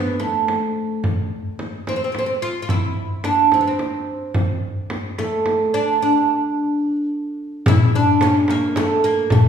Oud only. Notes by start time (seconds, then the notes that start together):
Already playing: B3
0.19 A3
1.89 C4
1.96 C4
2.04 C4
2.12 C4
2.19 C4
2.26 C4
2.42 F4
2.62 F4
2.70 E4
3.24 D4
3.54 C4
3.61 B3
3.67 C4
5.19 A3
5.74 D4
6.02 D4
7.68 E4
7.95 D4
8.22 C#4
8.50 A#3
8.77 A3
9.04 A#3
9.32 A3